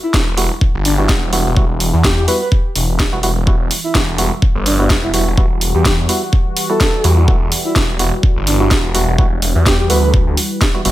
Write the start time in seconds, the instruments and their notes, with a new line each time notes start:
0.03 soft synth lead E4
0.14 detuned saw bass E1, kick, snare
0.37 synth stab G3 B3 E4 F#4, open hi-hat
0.61 kick
0.74 detuned saw bass G1
0.85 soft synth lead D4, open hi-hat
0.98 synth stab G3 B3 E4 F#4, soft synth lead D4
1.09 detuned saw bass E1, kick, snare
1.33 synth stab G3 B3 E4 F#4, open hi-hat
1.46 detuned saw bass E1
1.57 synth stab G3 B3 E4 F#4, kick
1.80 open hi-hat
1.93 detuned saw bass E2
2.04 soft synth lead G4, kick, snare
2.17 soft synth lead G4
2.28 synth stab G3 B3 E4 F#4, soft synth lead B4, open hi-hat
2.41 soft synth lead B4
2.52 kick
2.76 detuned saw bass E1, open hi-hat
2.99 kick, snare
3.12 detuned saw bass E1, synth stab G3 B3 E4 F#4
3.23 synth stab G3 B3 E4 F#4, open hi-hat
3.47 detuned saw bass E1, analog synth pad E3 G3 F#4, synth stab G3 B3 E4 F#4, kick
3.71 open hi-hat
3.84 soft synth lead E4
3.95 detuned saw bass E1, kick, snare
4.18 synth stab G3 B3 E4 F#4, open hi-hat
4.42 kick
4.55 detuned saw bass G1
4.66 soft synth lead D4, open hi-hat
4.79 synth stab G3 B3 E4 F#4, soft synth lead D4
4.90 detuned saw bass E1, kick, snare
5.03 soft synth lead E4
5.14 synth stab G3 B3 E4 F#4, soft synth lead E4, open hi-hat
5.27 detuned saw bass E1
5.38 synth stab G3 B3 E4 F#4, kick
5.61 open hi-hat
5.74 detuned saw bass E2, soft synth lead G4
5.85 soft synth lead G4, kick, snare
6.09 synth stab G3 B3 E4 F#4, open hi-hat
6.33 kick
6.57 open hi-hat
6.70 synth stab G3 B3 E4 F#4, soft synth lead A4
6.80 kick, snare
7.04 detuned saw bass E2, synth stab G3 B3 E4 F#4, open hi-hat
7.28 detuned saw bass E1, synth stab G3 B3 E4 F#4, kick
7.52 open hi-hat
7.65 soft synth lead E4
7.76 detuned saw bass E1, kick, snare
7.99 synth stab G3 B3 E4 F#4, open hi-hat
8.23 kick
8.36 detuned saw bass G1
8.47 soft synth lead D4, open hi-hat
8.60 synth stab G3 B3 E4 F#4, soft synth lead D4
8.71 detuned saw bass E1, kick, snare
8.95 synth stab G3 B3 E4 F#4, open hi-hat
9.08 detuned saw bass E1
9.18 synth stab G3 B3 E4 F#4, kick
9.42 open hi-hat
9.55 detuned saw bass E2
9.66 soft synth lead G4, kick, snare
9.79 soft synth lead G4
9.90 detuned saw bass D2, synth stab G3 B3 E4 F#4, soft synth lead B4, open hi-hat
10.03 soft synth lead B4
10.14 kick
10.27 detuned saw bass D2
10.37 open hi-hat
10.61 kick, snare
10.74 synth stab G3 B3 E4 F#4
10.85 detuned saw bass F#1, synth stab G3 B3 E4 F#4, open hi-hat